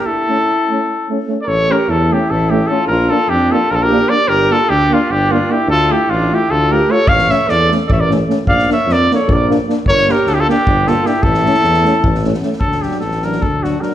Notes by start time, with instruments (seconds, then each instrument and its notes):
0.06 alto saxophone E4, trumpet A4
0.28 euphonium A3, trombone C#4
0.70 euphonium A3, trombone C#4
1.09 euphonium A3, trombone C#4
1.28 euphonium A3, trombone C#4
1.42 alto saxophone A#4, trumpet D5
1.47 tuba A1, alto saxophone A4, trumpet C#5
1.69 euphonium A3, trombone C#4, alto saxophone G4, trumpet A#4
1.88 tuba E2, alto saxophone E4, trumpet A4
2.11 euphonium A3, trombone C#4, alto saxophone E4, trumpet G4
2.30 tuba A1, alto saxophone E4, trumpet A4
2.50 euphonium A3, trombone C#4, alto saxophone E4, trumpet G4
2.67 euphonium A3, trombone C#4, trumpet A4
2.73 alto saxophone F4
2.87 tuba A#1, alto saxophone F4, trumpet A#4
3.10 euphonium A#3, trombone D4, trumpet A4
3.14 alto saxophone F4
3.29 tuba F2, alto saxophone D4, trumpet G4
3.50 euphonium A#3, trombone D4, alto saxophone F4, trumpet A4
3.70 tuba A#1, alto saxophone F4, trumpet A#4
3.75 alto saxophone F4, trumpet A4
3.83 alto saxophone G4, trumpet A#4
3.90 euphonium A#3, trombone D4
4.07 euphonium A#3, alto saxophone A#4, trumpet D5
4.12 trombone D4
4.28 tuba G1, alto saxophone G4, trumpet A#4
4.50 euphonium A#3, trombone D4, alto saxophone F4, trumpet A4
4.69 tuba D2, alto saxophone D4, trumpet G4
4.90 euphonium A#3, trombone D4, trumpet F4
4.96 alto saxophone D4
5.10 tuba G1, alto saxophone D4, trumpet G4
5.30 euphonium A#3, trombone D4, trumpet F4
5.34 alto saxophone D4
5.49 euphonium A#3, trombone D4, alto saxophone E4, trumpet G4
5.67 tuba D2, trumpet A4
5.72 alto saxophone F4
5.90 euphonium A3, alto saxophone E4, trombone F4, trumpet G4
6.08 tuba A1, trumpet F4
6.12 alto saxophone D4
6.31 euphonium A3, alto saxophone E4, trombone F4, trumpet G4
6.50 tuba D2, alto saxophone F4, trumpet A4
6.70 euphonium A3, trombone F4, alto saxophone G4, trumpet A#4
6.88 euphonium A3, trombone F4, alto saxophone A4, trumpet C#5
7.07 tuba A1, alto saxophone C#5, trumpet F5, kick
7.19 snare
7.28 euphonium A3, trombone C#4, alto saxophone C#5, trumpet E5, snare
7.48 tuba E2, alto saxophone A4, trumpet D5, snare
7.71 euphonium A3, trombone C#4, snare
7.87 tuba A1, alto saxophone A4, trumpet D5, kick
7.92 alto saxophone C#5, trumpet E5
8.00 alto saxophone A#4, trumpet D5
8.10 euphonium A3, trombone C#4, snare
8.28 euphonium A3, trombone C#4, snare
8.46 tuba A#1, alto saxophone D5, trumpet F5, kick
8.59 snare
8.69 euphonium A#3, trombone D4, alto saxophone C#5, snare
8.73 trumpet E5
8.86 tuba F2, snare
8.92 alto saxophone A#4, trumpet D5
9.11 euphonium A#3, trombone D4, alto saxophone A4, trumpet C#5, snare
9.28 tuba A#1, kick
9.33 alto saxophone A#4, trumpet D5
9.49 euphonium A#3, trombone D4, snare
9.67 euphonium A#3, trombone D4, snare
9.84 tuba G1, trumpet C#5, kick
9.89 alto saxophone A#4
9.98 snare
10.07 euphonium A#3, trombone D4, alto saxophone G4, snare
10.12 trumpet A#4
10.25 tuba D2, alto saxophone D4, trumpet A4, snare
10.32 alto saxophone E4, trumpet G4
10.39 alto saxophone F4, trumpet A4
10.47 euphonium A#3, alto saxophone D4, trombone D4, trumpet G4, snare
10.67 tuba G1, kick
10.87 euphonium A#3, trombone D4, alto saxophone F4, trumpet A4, snare
11.03 euphonium A#3, trombone D4, alto saxophone E4, trumpet G4, snare
11.23 tuba A1, alto saxophone E4, trumpet A4, kick
11.34 snare
11.43 euphonium A3, trombone C#4, snare
11.54 snare
11.62 tuba E2, snare
11.74 snare
11.85 euphonium A3, trombone C#4, snare
12.03 tuba A1, kick
12.15 snare
12.24 euphonium A3, trombone C#4, snare
12.34 snare
12.43 euphonium A3, trombone C#4, snare
12.53 snare
12.60 tuba D2, trumpet A4, kick
12.72 snare
12.82 euphonium F#3, trombone D4, trumpet G4, snare
12.91 snare
13.00 tuba A1, trumpet A4, snare
13.11 snare
13.22 euphonium F#3, trombone D4, trumpet A#4, snare
13.32 snare
13.42 tuba D2, trumpet A4, kick
13.62 euphonium F#3, trombone D4, trumpet F#4, snare
13.80 euphonium F#3, trombone D4, trumpet A#4, snare